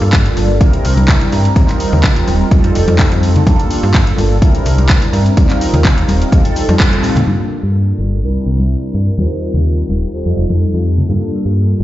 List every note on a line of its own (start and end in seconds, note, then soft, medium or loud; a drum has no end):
0.00 0.31 G2 medium
0.00 0.56 G3 medium
0.00 0.56 A#3 medium
0.00 0.57 D4 medium
0.00 0.57 F4 medium
0.00 0.57 A4 medium
0.13 kick loud
0.13 clap loud
0.13 closed hi-hat medium
0.26 closed hi-hat soft
0.37 0.62 G1 medium
0.37 open hi-hat medium
0.37 high conga medium
0.37 maracas medium
0.50 maracas soft
0.60 0.77 C2 medium
0.60 1.51 G3 medium
0.60 1.52 C4 medium
0.60 1.52 D4 medium
0.60 1.52 E4 medium
0.60 1.52 A#4 medium
0.60 kick loud
0.60 closed hi-hat medium
0.60 maracas soft
0.73 closed hi-hat soft
0.85 1.15 C2 medium
0.85 open hi-hat loud
0.85 maracas medium
0.97 closed hi-hat soft
0.97 high conga medium
0.97 maracas soft
1.08 kick loud
1.08 clap loud
1.08 closed hi-hat medium
1.21 closed hi-hat soft
1.32 1.49 G2 medium
1.32 open hi-hat medium
1.32 maracas medium
1.45 closed hi-hat soft
1.45 maracas soft
1.56 1.65 D#2 loud
1.56 2.47 G3 medium
1.56 2.47 C4 medium
1.56 2.47 D#4 medium
1.56 2.47 F4 medium
1.56 2.47 A#4 medium
1.56 kick loud
1.56 closed hi-hat medium
1.56 high conga medium
1.56 maracas soft
1.69 clap soft
1.69 closed hi-hat medium
1.80 open hi-hat loud
1.80 maracas medium
1.92 2.22 D#2 medium
1.92 low conga medium
1.92 maracas soft
2.04 kick loud
2.04 clap loud
2.04 closed hi-hat medium
2.16 closed hi-hat soft
2.28 2.44 D#1 medium
2.28 open hi-hat medium
2.28 high conga medium
2.28 maracas medium
2.41 maracas soft
2.51 3.42 G3 medium
2.51 3.42 C4 medium
2.51 3.42 D#4 medium
2.51 3.42 F4 medium
2.51 3.43 A4 medium
2.51 kick loud
2.51 closed hi-hat medium
2.51 maracas medium
2.64 2.72 F2 medium
2.64 closed hi-hat soft
2.75 2.84 F1 loud
2.75 open hi-hat medium
2.75 maracas medium
2.87 3.04 F2 medium
2.87 closed hi-hat soft
2.87 high conga medium
2.87 maracas soft
2.99 kick loud
2.99 clap loud
2.99 closed hi-hat medium
2.99 maracas soft
3.12 3.41 F2 loud
3.12 closed hi-hat medium
3.23 open hi-hat medium
3.23 maracas loud
3.35 closed hi-hat soft
3.35 low conga medium
3.35 maracas soft
3.46 3.55 G2 loud
3.46 4.37 G3 medium
3.46 4.37 A#3 medium
3.46 4.37 D4 medium
3.46 4.38 F4 medium
3.46 4.38 A4 medium
3.46 kick loud
3.46 closed hi-hat medium
3.46 high conga medium
3.46 maracas medium
3.60 closed hi-hat medium
3.70 open hi-hat loud
3.70 maracas medium
3.83 4.12 G2 medium
3.83 maracas soft
3.94 kick loud
3.94 clap loud
3.94 closed hi-hat medium
4.07 closed hi-hat medium
4.17 4.43 G1 medium
4.17 open hi-hat medium
4.17 high conga medium
4.17 maracas loud
4.31 maracas soft
4.41 4.58 C2 medium
4.41 5.32 G3 medium
4.41 5.33 C4 medium
4.41 5.33 D4 medium
4.41 5.33 E4 medium
4.41 5.33 A#4 medium
4.41 kick loud
4.41 closed hi-hat medium
4.41 maracas medium
4.55 closed hi-hat medium
4.65 4.96 C2 loud
4.65 open hi-hat loud
4.65 maracas medium
4.78 closed hi-hat soft
4.78 high conga medium
4.78 maracas soft
4.89 kick loud
4.89 clap loud
4.89 closed hi-hat medium
4.89 maracas soft
5.02 closed hi-hat medium
5.13 5.30 G2 medium
5.13 open hi-hat medium
5.13 maracas medium
5.26 closed hi-hat soft
5.26 maracas soft
5.37 5.46 D#2 loud
5.37 6.28 G3 medium
5.37 6.28 C4 medium
5.37 6.28 D#4 medium
5.37 6.28 F4 medium
5.37 6.28 A#4 medium
5.37 kick loud
5.37 closed hi-hat medium
5.37 high conga loud
5.37 maracas medium
5.50 clap soft
5.50 closed hi-hat medium
5.61 open hi-hat loud
5.61 maracas medium
5.73 6.03 D#2 medium
5.73 closed hi-hat soft
5.73 low conga medium
5.73 maracas soft
5.84 kick loud
5.84 clap loud
5.84 closed hi-hat medium
5.84 maracas soft
5.98 closed hi-hat medium
5.98 maracas soft
6.08 6.25 D#1 medium
6.08 open hi-hat medium
6.08 high conga medium
6.08 maracas loud
6.22 closed hi-hat soft
6.22 maracas soft
6.32 7.23 G3 medium
6.32 7.23 C4 medium
6.32 7.23 D#4 medium
6.32 7.23 F4 medium
6.32 7.24 A4 medium
6.32 kick loud
6.32 closed hi-hat medium
6.32 maracas medium
6.45 closed hi-hat medium
6.45 maracas soft
6.56 open hi-hat medium
6.56 maracas loud
6.69 6.76 F2 medium
6.69 closed hi-hat soft
6.69 high conga loud
6.69 maracas soft
6.80 kick loud
6.80 clap loud
6.80 closed hi-hat medium
6.80 maracas medium
6.92 closed hi-hat medium
6.92 maracas soft
7.03 7.14 A2 soft
7.03 open hi-hat medium
7.03 maracas loud
7.15 7.24 A2 medium
7.15 closed hi-hat soft
7.15 low conga loud
7.15 maracas soft
7.27 7.36 G2 medium
7.27 8.18 G3 medium
7.27 8.18 A#3 medium
7.27 8.19 F4 medium
7.27 8.19 A4 medium
7.27 high conga medium
7.27 maracas medium
7.51 maracas loud
7.63 7.93 G2 medium
7.63 maracas soft
7.99 8.24 G1 medium
7.99 high conga medium
7.99 maracas medium
8.13 maracas soft
8.22 8.39 C2 medium
8.22 9.13 G3 medium
8.22 9.13 C4 medium
8.22 9.14 D4 medium
8.22 9.14 E4 medium
8.22 9.14 A#4 medium
8.22 maracas soft
8.46 8.76 C2 medium
8.46 maracas medium
8.59 high conga medium
8.59 maracas soft
8.70 maracas soft
8.94 9.11 G2 medium
8.94 maracas medium
9.17 9.26 D#2 medium
9.17 10.09 G3 medium
9.17 10.09 C4 medium
9.17 10.09 D#4 medium
9.17 10.09 F4 medium
9.17 10.09 A#4 medium
9.17 high conga medium
9.17 maracas soft
9.42 maracas medium
9.54 9.83 D#2 medium
9.54 low conga medium
9.54 maracas soft
9.66 maracas soft
9.89 10.06 D#1 medium
9.89 high conga medium
9.89 maracas medium
10.03 maracas soft
10.12 11.04 G3 medium
10.12 11.04 C4 medium
10.12 11.04 D#4 medium
10.12 11.04 F4 medium
10.12 11.05 A4 medium
10.12 maracas medium
10.26 10.33 F2 medium
10.37 10.46 F1 loud
10.37 maracas medium
10.50 10.65 F2 medium
10.50 high conga medium
10.50 maracas soft
10.60 maracas soft
10.74 11.03 F2 medium
10.85 maracas medium
10.98 low conga medium
10.98 maracas soft
11.08 11.17 G2 medium
11.08 11.84 G3 medium
11.08 11.84 A#3 medium
11.08 11.84 D4 medium
11.08 11.84 F4 medium
11.08 11.84 A4 medium
11.08 high conga medium
11.08 maracas soft
11.32 maracas medium
11.45 11.74 G2 medium
11.57 maracas medium
11.80 11.84 G1 medium
11.80 high conga medium
11.80 maracas medium